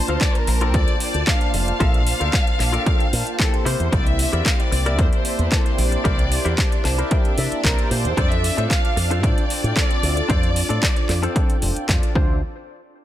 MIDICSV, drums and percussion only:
0, 0, Header, 1, 2, 480
1, 0, Start_track
1, 0, Tempo, 530973
1, 1629, Time_signature, 4, 2, 24, 8
1, 11793, End_track
2, 0, Start_track
2, 0, Title_t, "Drums"
2, 75, Note_on_c, 9, 42, 39
2, 165, Note_off_c, 9, 42, 0
2, 189, Note_on_c, 9, 36, 121
2, 190, Note_on_c, 9, 42, 63
2, 192, Note_on_c, 9, 39, 122
2, 280, Note_off_c, 9, 36, 0
2, 280, Note_off_c, 9, 42, 0
2, 283, Note_off_c, 9, 39, 0
2, 318, Note_on_c, 9, 42, 38
2, 408, Note_off_c, 9, 42, 0
2, 428, Note_on_c, 9, 46, 103
2, 519, Note_off_c, 9, 46, 0
2, 553, Note_on_c, 9, 42, 38
2, 644, Note_off_c, 9, 42, 0
2, 669, Note_on_c, 9, 42, 65
2, 670, Note_on_c, 9, 36, 127
2, 760, Note_off_c, 9, 36, 0
2, 760, Note_off_c, 9, 42, 0
2, 793, Note_on_c, 9, 42, 36
2, 884, Note_off_c, 9, 42, 0
2, 907, Note_on_c, 9, 46, 110
2, 998, Note_off_c, 9, 46, 0
2, 1034, Note_on_c, 9, 42, 40
2, 1124, Note_off_c, 9, 42, 0
2, 1150, Note_on_c, 9, 42, 65
2, 1151, Note_on_c, 9, 36, 125
2, 1153, Note_on_c, 9, 39, 124
2, 1240, Note_off_c, 9, 42, 0
2, 1241, Note_off_c, 9, 36, 0
2, 1243, Note_off_c, 9, 39, 0
2, 1274, Note_on_c, 9, 42, 40
2, 1365, Note_off_c, 9, 42, 0
2, 1390, Note_on_c, 9, 46, 97
2, 1481, Note_off_c, 9, 46, 0
2, 1518, Note_on_c, 9, 42, 39
2, 1609, Note_off_c, 9, 42, 0
2, 1630, Note_on_c, 9, 36, 127
2, 1631, Note_on_c, 9, 42, 62
2, 1721, Note_off_c, 9, 36, 0
2, 1721, Note_off_c, 9, 42, 0
2, 1756, Note_on_c, 9, 42, 37
2, 1846, Note_off_c, 9, 42, 0
2, 1867, Note_on_c, 9, 46, 115
2, 1958, Note_off_c, 9, 46, 0
2, 1996, Note_on_c, 9, 42, 40
2, 2086, Note_off_c, 9, 42, 0
2, 2109, Note_on_c, 9, 36, 123
2, 2110, Note_on_c, 9, 42, 61
2, 2113, Note_on_c, 9, 39, 120
2, 2200, Note_off_c, 9, 36, 0
2, 2201, Note_off_c, 9, 42, 0
2, 2203, Note_off_c, 9, 39, 0
2, 2236, Note_on_c, 9, 42, 36
2, 2326, Note_off_c, 9, 42, 0
2, 2353, Note_on_c, 9, 46, 96
2, 2355, Note_on_c, 9, 39, 38
2, 2443, Note_off_c, 9, 46, 0
2, 2446, Note_off_c, 9, 39, 0
2, 2475, Note_on_c, 9, 42, 39
2, 2565, Note_off_c, 9, 42, 0
2, 2589, Note_on_c, 9, 36, 127
2, 2589, Note_on_c, 9, 42, 64
2, 2680, Note_off_c, 9, 36, 0
2, 2680, Note_off_c, 9, 42, 0
2, 2715, Note_on_c, 9, 42, 36
2, 2805, Note_off_c, 9, 42, 0
2, 2830, Note_on_c, 9, 46, 108
2, 2920, Note_off_c, 9, 46, 0
2, 2954, Note_on_c, 9, 42, 38
2, 3044, Note_off_c, 9, 42, 0
2, 3069, Note_on_c, 9, 36, 127
2, 3071, Note_on_c, 9, 42, 61
2, 3074, Note_on_c, 9, 39, 120
2, 3160, Note_off_c, 9, 36, 0
2, 3162, Note_off_c, 9, 42, 0
2, 3164, Note_off_c, 9, 39, 0
2, 3197, Note_on_c, 9, 42, 38
2, 3288, Note_off_c, 9, 42, 0
2, 3312, Note_on_c, 9, 46, 102
2, 3402, Note_off_c, 9, 46, 0
2, 3436, Note_on_c, 9, 42, 36
2, 3526, Note_off_c, 9, 42, 0
2, 3548, Note_on_c, 9, 36, 125
2, 3550, Note_on_c, 9, 42, 63
2, 3639, Note_off_c, 9, 36, 0
2, 3640, Note_off_c, 9, 42, 0
2, 3676, Note_on_c, 9, 42, 38
2, 3766, Note_off_c, 9, 42, 0
2, 3788, Note_on_c, 9, 46, 117
2, 3879, Note_off_c, 9, 46, 0
2, 3916, Note_on_c, 9, 42, 40
2, 4006, Note_off_c, 9, 42, 0
2, 4028, Note_on_c, 9, 36, 121
2, 4032, Note_on_c, 9, 42, 66
2, 4034, Note_on_c, 9, 39, 118
2, 4118, Note_off_c, 9, 36, 0
2, 4122, Note_off_c, 9, 42, 0
2, 4125, Note_off_c, 9, 39, 0
2, 4156, Note_on_c, 9, 42, 39
2, 4246, Note_off_c, 9, 42, 0
2, 4270, Note_on_c, 9, 46, 95
2, 4360, Note_off_c, 9, 46, 0
2, 4395, Note_on_c, 9, 42, 40
2, 4485, Note_off_c, 9, 42, 0
2, 4507, Note_on_c, 9, 42, 65
2, 4508, Note_on_c, 9, 36, 127
2, 4598, Note_off_c, 9, 36, 0
2, 4598, Note_off_c, 9, 42, 0
2, 4634, Note_on_c, 9, 42, 36
2, 4724, Note_off_c, 9, 42, 0
2, 4745, Note_on_c, 9, 46, 106
2, 4835, Note_off_c, 9, 46, 0
2, 4872, Note_on_c, 9, 42, 39
2, 4963, Note_off_c, 9, 42, 0
2, 4988, Note_on_c, 9, 36, 125
2, 4989, Note_on_c, 9, 42, 64
2, 4991, Note_on_c, 9, 39, 120
2, 5079, Note_off_c, 9, 36, 0
2, 5079, Note_off_c, 9, 42, 0
2, 5081, Note_off_c, 9, 39, 0
2, 5116, Note_on_c, 9, 42, 39
2, 5206, Note_off_c, 9, 42, 0
2, 5229, Note_on_c, 9, 46, 94
2, 5319, Note_off_c, 9, 46, 0
2, 5354, Note_on_c, 9, 42, 37
2, 5445, Note_off_c, 9, 42, 0
2, 5469, Note_on_c, 9, 36, 119
2, 5469, Note_on_c, 9, 42, 61
2, 5559, Note_off_c, 9, 36, 0
2, 5560, Note_off_c, 9, 42, 0
2, 5596, Note_on_c, 9, 42, 39
2, 5686, Note_off_c, 9, 42, 0
2, 5710, Note_on_c, 9, 46, 105
2, 5801, Note_off_c, 9, 46, 0
2, 5837, Note_on_c, 9, 42, 41
2, 5927, Note_off_c, 9, 42, 0
2, 5949, Note_on_c, 9, 36, 123
2, 5951, Note_on_c, 9, 42, 68
2, 5953, Note_on_c, 9, 39, 108
2, 6040, Note_off_c, 9, 36, 0
2, 6041, Note_off_c, 9, 42, 0
2, 6044, Note_off_c, 9, 39, 0
2, 6077, Note_on_c, 9, 42, 40
2, 6168, Note_off_c, 9, 42, 0
2, 6192, Note_on_c, 9, 46, 91
2, 6195, Note_on_c, 9, 39, 37
2, 6283, Note_off_c, 9, 46, 0
2, 6285, Note_off_c, 9, 39, 0
2, 6317, Note_on_c, 9, 42, 41
2, 6407, Note_off_c, 9, 42, 0
2, 6428, Note_on_c, 9, 42, 67
2, 6430, Note_on_c, 9, 36, 123
2, 6518, Note_off_c, 9, 42, 0
2, 6520, Note_off_c, 9, 36, 0
2, 6554, Note_on_c, 9, 42, 39
2, 6644, Note_off_c, 9, 42, 0
2, 6668, Note_on_c, 9, 46, 106
2, 6758, Note_off_c, 9, 46, 0
2, 6797, Note_on_c, 9, 42, 41
2, 6887, Note_off_c, 9, 42, 0
2, 6909, Note_on_c, 9, 36, 116
2, 6913, Note_on_c, 9, 42, 71
2, 6915, Note_on_c, 9, 39, 120
2, 7000, Note_off_c, 9, 36, 0
2, 7003, Note_off_c, 9, 42, 0
2, 7006, Note_off_c, 9, 39, 0
2, 7038, Note_on_c, 9, 42, 40
2, 7129, Note_off_c, 9, 42, 0
2, 7152, Note_on_c, 9, 46, 90
2, 7243, Note_off_c, 9, 46, 0
2, 7278, Note_on_c, 9, 42, 39
2, 7368, Note_off_c, 9, 42, 0
2, 7388, Note_on_c, 9, 36, 113
2, 7391, Note_on_c, 9, 42, 68
2, 7479, Note_off_c, 9, 36, 0
2, 7482, Note_off_c, 9, 42, 0
2, 7518, Note_on_c, 9, 42, 40
2, 7609, Note_off_c, 9, 42, 0
2, 7632, Note_on_c, 9, 46, 111
2, 7722, Note_off_c, 9, 46, 0
2, 7758, Note_on_c, 9, 42, 41
2, 7848, Note_off_c, 9, 42, 0
2, 7868, Note_on_c, 9, 36, 109
2, 7874, Note_on_c, 9, 42, 70
2, 7877, Note_on_c, 9, 39, 122
2, 7959, Note_off_c, 9, 36, 0
2, 7965, Note_off_c, 9, 42, 0
2, 7967, Note_off_c, 9, 39, 0
2, 7998, Note_on_c, 9, 42, 39
2, 8088, Note_off_c, 9, 42, 0
2, 8111, Note_on_c, 9, 46, 91
2, 8201, Note_off_c, 9, 46, 0
2, 8236, Note_on_c, 9, 42, 44
2, 8327, Note_off_c, 9, 42, 0
2, 8347, Note_on_c, 9, 36, 115
2, 8351, Note_on_c, 9, 42, 72
2, 8437, Note_off_c, 9, 36, 0
2, 8441, Note_off_c, 9, 42, 0
2, 8478, Note_on_c, 9, 42, 40
2, 8568, Note_off_c, 9, 42, 0
2, 8590, Note_on_c, 9, 46, 102
2, 8681, Note_off_c, 9, 46, 0
2, 8718, Note_on_c, 9, 42, 41
2, 8808, Note_off_c, 9, 42, 0
2, 8826, Note_on_c, 9, 36, 114
2, 8831, Note_on_c, 9, 42, 74
2, 8833, Note_on_c, 9, 39, 119
2, 8917, Note_off_c, 9, 36, 0
2, 8921, Note_off_c, 9, 42, 0
2, 8923, Note_off_c, 9, 39, 0
2, 8954, Note_on_c, 9, 42, 40
2, 9045, Note_off_c, 9, 42, 0
2, 9070, Note_on_c, 9, 46, 85
2, 9160, Note_off_c, 9, 46, 0
2, 9194, Note_on_c, 9, 42, 43
2, 9285, Note_off_c, 9, 42, 0
2, 9307, Note_on_c, 9, 36, 119
2, 9307, Note_on_c, 9, 42, 68
2, 9398, Note_off_c, 9, 36, 0
2, 9398, Note_off_c, 9, 42, 0
2, 9432, Note_on_c, 9, 42, 40
2, 9522, Note_off_c, 9, 42, 0
2, 9548, Note_on_c, 9, 46, 111
2, 9638, Note_off_c, 9, 46, 0
2, 9675, Note_on_c, 9, 42, 42
2, 9765, Note_off_c, 9, 42, 0
2, 9787, Note_on_c, 9, 36, 114
2, 9789, Note_on_c, 9, 42, 70
2, 9792, Note_on_c, 9, 39, 123
2, 9877, Note_off_c, 9, 36, 0
2, 9880, Note_off_c, 9, 42, 0
2, 9882, Note_off_c, 9, 39, 0
2, 9912, Note_on_c, 9, 42, 41
2, 10002, Note_off_c, 9, 42, 0
2, 10026, Note_on_c, 9, 46, 92
2, 10029, Note_on_c, 9, 39, 39
2, 10116, Note_off_c, 9, 46, 0
2, 10119, Note_off_c, 9, 39, 0
2, 10154, Note_on_c, 9, 42, 43
2, 10245, Note_off_c, 9, 42, 0
2, 10267, Note_on_c, 9, 36, 127
2, 10268, Note_on_c, 9, 42, 74
2, 10358, Note_off_c, 9, 36, 0
2, 10358, Note_off_c, 9, 42, 0
2, 10392, Note_on_c, 9, 42, 43
2, 10483, Note_off_c, 9, 42, 0
2, 10505, Note_on_c, 9, 46, 100
2, 10596, Note_off_c, 9, 46, 0
2, 10635, Note_on_c, 9, 42, 43
2, 10726, Note_off_c, 9, 42, 0
2, 10748, Note_on_c, 9, 36, 119
2, 10748, Note_on_c, 9, 42, 70
2, 10751, Note_on_c, 9, 39, 127
2, 10838, Note_off_c, 9, 36, 0
2, 10839, Note_off_c, 9, 42, 0
2, 10841, Note_off_c, 9, 39, 0
2, 10875, Note_on_c, 9, 42, 44
2, 10966, Note_off_c, 9, 42, 0
2, 10988, Note_on_c, 9, 36, 119
2, 11078, Note_off_c, 9, 36, 0
2, 11793, End_track
0, 0, End_of_file